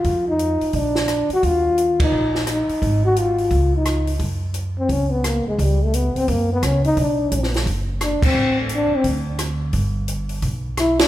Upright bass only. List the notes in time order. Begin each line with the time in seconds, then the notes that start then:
0.05 F2
0.62 muted upright bass stroke
0.73 A#1
1.29 muted upright bass stroke
1.43 D#2
2.12 A#1
2.69 muted upright bass stroke
2.82 G#1
3.51 C#2
4.19 F#2
4.89 C#2
5.46 muted upright bass stroke
5.58 C#2
6.15 muted upright bass stroke
6.28 F#2
6.62 C#2
6.97 B1
7.32 A#1
7.66 F#1
8.22 muted upright bass stroke
8.34 A1
8.91 muted upright bass stroke
9.04 D2
9.73 G1
10.42 B1